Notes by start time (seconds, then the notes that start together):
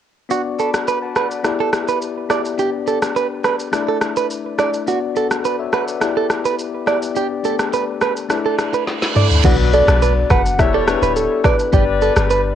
0.29 B3 D4 F#4 D5, shaker
0.59 A4 B5 D6, shaker
0.74 cross-stick, shaker
0.88 B4 B5, shaker
1.02 F#5 A5
1.16 B4 D5 F#5, cross-stick, shaker
1.31 B4 D5, shaker
1.43 B3 E4 G4 D5, cross-stick, shaker
1.60 A4
1.73 cross-stick, shaker
1.88 B4, shaker
2.02 shaker
2.29 B3 E4 G4 D5, cross-stick, shaker
2.45 shaker
2.57 B3 D4 G4 D5, shaker
2.86 B3 D4 G4 A4 D5, shaker
3.02 cross-stick, shaker
3.16 B4, shaker
3.44 B4, cross-stick, shaker
3.59 shaker
3.72 A3 D4 E4 D5, cross-stick, shaker
3.88 A4
4.01 cross-stick, shaker
4.17 B4, shaker
4.30 shaker
4.58 A3 D4 E4 D5, cross-stick, shaker
4.74 shaker
4.86 B3 D4 F#4 D5, shaker
5.15 B3 D4 F#4 A4, shaker
5.31 cross-stick, shaker
5.45 B4, shaker
5.59 C#5 E5
5.73 B4 D5 F#5, cross-stick, shaker
5.88 B4 D5, shaker
6.00 B3 E4 G4 D5, cross-stick, shaker
6.17 A4
6.30 cross-stick, shaker
6.45 B4, shaker
6.59 shaker
6.86 B3 E4 G4 D5, cross-stick, shaker
7.02 shaker
7.15 B3 D4 G4 D5, shaker
7.43 A3 D4 G4 A4, shaker
7.50 B3
7.59 cross-stick, shaker
7.73 B4, shaker
8.01 B4, cross-stick, shaker
8.17 shaker
8.29 A3 D4 E4 D5, cross-stick, reverse cymbal, shaker
8.46 A4
8.59 cross-stick, shaker
8.74 B4, shaker
8.87 D5, snare, shaker
9.02 snare
9.15 A3 D4 E4 A4 D5, mid tom, shaker
9.31 floor tom, shaker
9.43 B1 F#3 B3 D4 F#4 B4 D5, kick, crash, impact, shaker
9.73 A4 D5, shaker
9.88 B1, cross-stick, shaker
10.02 B4, shaker
10.30 F#1 B4 F#5, kick, cross-stick, shaker
10.45 shaker
10.58 E1 G3 B3 E4 G4 C#5 D5 E5, kick, cross-stick, shaker
10.74 A4 D5
10.86 B3 D4 E4 G4 B4, cross-stick, shaker
11.02 D1 B4, shaker
11.16 A4, shaker
11.44 B4 D5, kick, cross-stick, shaker
11.59 shaker
11.72 G1 G3 B3 D4 G4 B4 D5, kick, shaker
12.01 A4, shaker
12.16 G1, cross-stick, shaker
12.30 B4, shaker